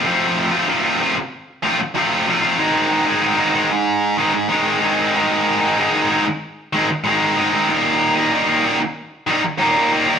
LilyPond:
\new Staff \with { instrumentName = "Distorted electric guitar" } { \time 4/4 \key aes \lydian \tempo 4 = 94 <f, c f a c' f'>8. <f a c' f'>16 <f, c f a c' f'>16 <f a c' f'>16 <f a c' f'>8. r16 <f a c' f'>8 <f, c f a c' f'>8 <f a c' f'>16 <f a c' f'>16 | <aes, ees aes c' ees'>8. <aes c' ees'>16 <aes, ees aes c' ees'>16 <aes c' ees'>16 <ees aes c' ees'>8. r16 <ees aes c' ees'>8 <aes, ees aes c' ees'>8 <ees aes c' ees'>16 <aes c' ees'>16 | <aes, ees aes c' ees'>8. <aes c' ees'>16 <aes, ees aes c' ees'>16 <aes c' ees'>16 <ees aes c' ees'>8. r16 <ees aes c' ees'>8 <aes, ees aes c' ees'>8 <ees aes c' ees'>16 <aes c' ees'>16 | <ees, bes, ees g bes ees'>8. <ees g bes ees'>16 <ees, bes, ees g bes ees'>16 <ees g bes ees'>16 <ees g bes ees'>8. r16 <ees g bes ees'>8 <ees, bes, ees g bes ees'>8 <ees g bes ees'>16 <ees g bes ees'>16 | }